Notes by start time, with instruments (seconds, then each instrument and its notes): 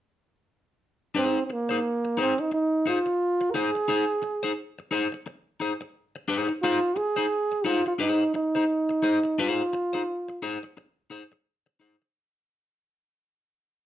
1.15 trombone C4, clean electric guitar D#4 G#4 C5
1.46 trombone C4
1.50 trombone A#3, muted clean electric guitar stroke
1.69 clean electric guitar D#4 G#4 C5
2.05 muted clean electric guitar stroke
2.17 trombone C4, clean electric guitar D#4 G#4 C5
2.38 trombone D#4, muted clean electric guitar stroke
2.52 trombone D#4, muted clean electric guitar stroke
2.86 clean electric guitar D#4 G#4 C5, trombone F4
3.06 muted clean electric guitar stroke
3.41 muted clean electric guitar stroke
3.50 clean electric guitar D#4, trombone A#4
3.54 trombone G#4, clean electric guitar G#4 C5
3.75 muted clean electric guitar stroke
3.88 clean electric guitar D#4 G#4 C5
4.22 muted clean electric guitar stroke
4.43 clean electric guitar D#4 G#4 C5
4.79 muted clean electric guitar stroke
4.91 clean electric guitar D#4 G#4 C5
5.12 muted clean electric guitar stroke
5.26 muted clean electric guitar stroke
5.60 clean electric guitar D#4 G#4 C5
5.81 muted clean electric guitar stroke
6.16 muted clean electric guitar stroke
6.28 clean electric guitar D#4 G#4 C5
6.49 muted clean electric guitar stroke
6.62 clean electric guitar D#4 G#4 C5, trombone F4
6.96 trombone G#4, muted clean electric guitar stroke
7.16 clean electric guitar D#4 G#4 C5
7.52 muted clean electric guitar stroke
7.64 clean electric guitar D#4 G#4 C5, trombone F4
7.86 trombone F4, muted clean electric guitar stroke
7.99 clean electric guitar D#4 G#4 C5, trombone D#4
8.34 trombone D#4, muted clean electric guitar stroke
8.55 clean electric guitar D#4 G#4 C5
8.89 muted clean electric guitar stroke
9.03 clean electric guitar D#4 G#4 C5
9.24 muted clean electric guitar stroke
9.38 clean electric guitar D#4 G#4 C5, trombone F4
9.73 muted clean electric guitar stroke
9.93 clean electric guitar D#4 G#4 C5
10.29 muted clean electric guitar stroke
10.42 clean electric guitar D#4 G#4 C5
10.63 muted clean electric guitar stroke
10.77 muted clean electric guitar stroke
11.10 clean electric guitar D#4 G#4 C5
11.32 muted clean electric guitar stroke
11.66 muted clean electric guitar stroke
11.80 clean electric guitar D#4 G#4 C5
12.02 muted clean electric guitar stroke